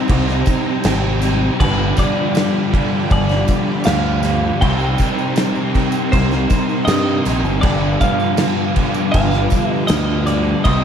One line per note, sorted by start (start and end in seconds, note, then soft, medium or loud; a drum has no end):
0.00 0.83 C3 medium
0.00 1.57 C3 medium
0.00 0.86 G3 medium
0.00 1.62 G3 loud
0.00 0.83 C4 medium
0.00 1.59 C4 loud
0.00 0.82 D#4 loud
0.00 1.57 D#4 medium
0.00 0.88 G4 loud
0.00 1.57 C5 medium
0.00 10.63 G5 medium
0.00 1.57 A#5 medium
0.08 0.42 C2 loud
0.08 kick loud
0.08 tambourine soft
0.08 crash medium
0.28 snare soft
0.28 tambourine soft
0.46 kick medium
0.46 tambourine medium
0.46 crash medium
0.84 1.48 G#1 loud
0.84 1.58 C3 medium
0.84 1.61 G3 medium
0.84 1.59 C4 medium
0.84 1.59 D#4 medium
0.84 snare loud
0.84 tambourine medium
0.84 crash loud
0.89 1.63 G4 medium
1.20 1.61 G3 medium
1.20 1.57 C4 medium
1.20 tambourine medium
1.20 crash medium
1.58 1.92 G1 medium
1.58 2.71 G2 medium
1.58 2.71 D3 medium
1.58 2.71 F3 loud
1.58 4.58 F4 medium
1.58 1.95 B4 medium
1.58 4.58 D5 medium
1.58 4.58 B5 medium
1.58 kick loud
1.58 crash medium
1.62 2.73 G3 loud
1.62 2.71 B3 loud
1.62 2.71 G4 loud
1.97 2.35 D3 medium
1.97 2.38 G3 medium
1.97 3.11 D5 medium
1.97 kick medium
1.97 tambourine medium
1.97 crash medium
2.34 3.10 G2 medium
2.34 2.75 D3 medium
2.34 2.73 G3 medium
2.34 snare loud
2.34 tambourine medium
2.34 crash medium
2.71 3.85 G2 medium
2.71 3.85 D3 medium
2.71 3.84 F3 medium
2.71 3.88 G3 medium
2.71 3.84 B3 medium
2.71 3.89 G4 medium
2.71 kick medium
2.71 crash medium
3.10 3.43 G1 loud
3.10 3.85 D5 medium
3.10 kick loud
3.10 tambourine soft
3.10 crash medium
3.29 snare soft
3.29 tambourine soft
3.48 kick medium
3.48 tambourine medium
3.48 crash medium
3.84 4.50 D2 loud
3.84 4.59 G2 medium
3.84 4.60 D3 medium
3.84 4.61 F5 loud
3.84 snare loud
3.84 tambourine medium
3.84 crash medium
3.88 4.60 F3 medium
3.88 4.62 G3 medium
3.88 4.61 B3 medium
3.88 4.64 G4 medium
4.23 4.60 D3 medium
4.23 4.62 G3 medium
4.23 tambourine medium
4.23 crash medium
4.61 4.94 C2 loud
4.61 5.72 C3 medium
4.61 5.76 G3 medium
4.61 5.74 C4 loud
4.61 7.60 D#4 medium
4.61 5.74 D#4 loud
4.61 5.73 G4 loud
4.61 7.60 A#4 medium
4.61 5.71 G5 loud
4.61 7.61 C6 medium
4.61 kick loud
4.61 crash medium
4.79 tambourine soft
4.98 5.39 G3 medium
4.98 5.39 C4 medium
4.98 kick medium
4.98 tambourine medium
4.98 crash medium
5.18 tambourine soft
5.36 6.13 C3 medium
5.36 5.77 G3 medium
5.36 snare loud
5.36 tambourine medium
5.36 crash medium
5.41 5.73 C4 medium
5.55 tambourine soft
5.73 6.86 G3 medium
5.73 6.86 C4 medium
5.73 6.86 D#4 medium
5.73 6.89 G4 medium
5.73 kick medium
5.73 tambourine soft
5.73 crash medium
5.77 6.84 C3 medium
5.92 tambourine medium
6.12 6.45 C2 loud
6.12 6.90 C5 medium
6.12 kick loud
6.12 tambourine soft
6.12 crash medium
6.31 snare soft
6.31 tambourine soft
6.50 kick medium
6.50 tambourine medium
6.50 crash medium
6.69 tambourine soft
6.85 7.20 G2 loud
6.85 7.60 C3 medium
6.85 7.62 G3 medium
6.85 7.61 C4 medium
6.85 7.62 D#4 medium
6.85 7.39 D#5 loud
6.85 snare loud
6.85 tambourine medium
6.85 crash medium
6.89 7.65 G4 medium
7.25 7.43 A#1 medium
7.25 7.61 C4 medium
7.25 tambourine medium
7.25 crash medium
7.30 7.66 G3 medium
7.44 7.61 G1 medium
7.44 tambourine soft
7.61 7.96 G1 loud
7.61 8.73 G2 loud
7.61 8.74 D3 medium
7.61 8.74 F3 medium
7.61 8.74 B3 loud
7.61 8.75 F4 loud
7.61 10.63 F4 medium
7.61 8.75 G4 loud
7.61 8.01 D5 medium
7.61 kick loud
7.61 crash medium
7.65 10.66 G3 loud
7.65 8.01 G3 loud
7.65 10.63 B4 medium
7.65 10.63 D6 medium
8.01 8.40 D3 medium
8.01 8.42 G3 medium
8.01 9.11 F5 loud
8.01 kick medium
8.01 tambourine medium
8.01 crash medium
8.20 tambourine soft
8.37 9.15 G2 medium
8.37 8.79 D3 medium
8.37 snare loud
8.37 tambourine medium
8.37 crash medium
8.43 8.77 G3 medium
8.75 9.88 G2 medium
8.75 9.89 D3 medium
8.75 9.88 F3 medium
8.75 9.93 G3 medium
8.75 9.88 B3 medium
8.75 9.87 F4 medium
8.75 9.92 G4 loud
8.75 kick medium
8.75 crash medium
8.94 tambourine medium
9.12 9.46 G1 loud
9.12 9.70 F5 loud
9.12 kick loud
9.12 tambourine soft
9.12 crash medium
9.32 snare soft
9.32 tambourine soft
9.50 kick medium
9.50 tambourine medium
9.50 crash medium
9.70 9.87 D#5 loud
9.87 10.54 D2 loud
9.87 10.63 G2 medium
9.87 10.63 D3 medium
9.87 10.63 F3 medium
9.87 10.26 D#5 loud
9.87 snare loud
9.87 tambourine loud
9.87 crash medium
9.91 10.29 G3 medium
9.91 10.64 B3 medium
9.91 10.64 F4 medium
9.91 10.68 G4 medium
10.26 10.68 G3 medium
10.26 10.64 D5 medium
10.26 tambourine medium
10.26 crash medium
10.33 10.65 D3 medium
10.63 10.84 C2 loud
10.63 10.84 C3 loud
10.63 10.84 G3 loud
10.63 10.84 C4 loud
10.63 10.84 D#4 medium
10.63 10.84 A#4 medium
10.63 10.84 D#5 loud
10.63 10.84 G5 medium
10.63 10.84 C6 medium
10.63 kick loud
10.63 crash medium
10.68 10.84 G4 loud